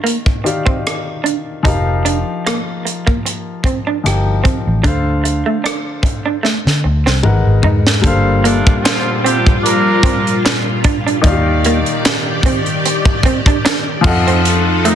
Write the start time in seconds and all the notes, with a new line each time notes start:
Already playing: D#3 D#4 G4 D5 F5
0.04 A#3, closed hi-hat
0.26 kick
0.44 D#3 D#4 G4 D5 F5, muted clean electric guitar stroke, closed hi-hat
0.66 C4, kick
0.87 cross-stick, closed hi-hat
1.24 D4, closed hi-hat
1.63 F1 F3 D#4 G4, kick, closed hi-hat
1.67 A#4 F5
2.05 D4, closed hi-hat
2.46 A#3, cross-stick, closed hi-hat
2.85 muted clean electric guitar stroke, closed hi-hat
3.07 A#3, kick
3.26 muted clean electric guitar stroke, closed hi-hat
3.64 C4, kick, closed hi-hat
3.87 D4
4.04 G1 F3 D#4 G4 A#4 G5, cross-stick, closed hi-hat
4.44 C4, kick, closed hi-hat
4.67 A1
4.83 D2 D3 D4 A4 C5, kick, closed hi-hat
4.88 F5
5.24 muted clean electric guitar stroke, closed hi-hat
5.46 A3
5.64 D4, cross-stick, closed hi-hat
6.03 muted clean electric guitar stroke, kick, closed hi-hat
6.26 D4
6.43 A3, snare
6.66 D3, snare
6.84 D2, muted clean electric guitar stroke
7.06 C2 C4, snare
7.23 G#1 G#3 D#4 A#4 B4 F#5, mid tom
7.47 G#1
7.63 G#2 D#4, floor tom
7.87 snare
8.01 G1 A#2 G3 A#3 D4 F4 A4, kick, closed hi-hat
8.06 C5 F5
8.43 A#2 D3 A3 A#3 D4, closed hi-hat
8.67 kick
8.83 D3 F3 C4 F4, snare, clap, closed hi-hat
9.23 D3 G3 C4 G4, closed hi-hat
9.46 kick
9.63 F3 A#3 D4 A#4, closed hi-hat
10.03 C4, kick, closed hi-hat
10.27 closed hi-hat
10.45 muted clean electric guitar stroke, snare, clap, closed hi-hat
10.84 D4, kick, closed hi-hat
11.07 D4, closed hi-hat
11.21 D#2 D#3 D#4 F4 G4 D5, kick, closed hi-hat
11.27 G4 F5
11.64 A#3, closed hi-hat
11.86 closed hi-hat
12.05 snare, clap, closed hi-hat
12.43 C4, kick, closed hi-hat
12.66 closed hi-hat
12.86 muted clean electric guitar stroke, closed hi-hat
13.05 kick
13.23 C4, kick, closed hi-hat
13.46 D4, kick, closed hi-hat
13.65 D4, snare, clap, closed hi-hat
14.01 F2 F3 D#4 F4 A4 F#5, muted clean electric guitar stroke, kick, crash
14.05 D#5 F#5
14.27 C4, closed hi-hat
14.45 closed hi-hat
14.83 C3 D#3 A3 D#4, closed hi-hat